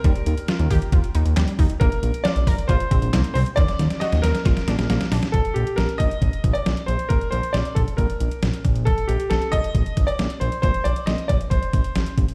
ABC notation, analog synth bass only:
X:1
M:4/4
L:1/16
Q:1/4=136
K:Cdor
V:1 name="Analog synth bass" clef=bass
E,, z E,, z2 E,, E,, z E,, z E,, E,, E,, z E,, z | B,,, z B,,, z2 B,,, B,,, z B,,, z B,,, B,,, C,, z C,, z | E,, z E,, z2 E,, E,, z B,,, z B,,, B,,, B,,, z B,,, z | B,,, z B,,, z B,,, z B,,, z B,,, z B,,, z B,,, z B,,, z |
B,,, z B,,, z B,,, z B,,, z B,,, z B,,, z B,,, z B,,,2- | B,,, z B,,, z B,,, z B,,, z B,,, z B,,, z B,,, z B,,, z | B,,, z B,,, z B,,, z B,,, z B,,, z B,,, z A,,, z A,,, z |]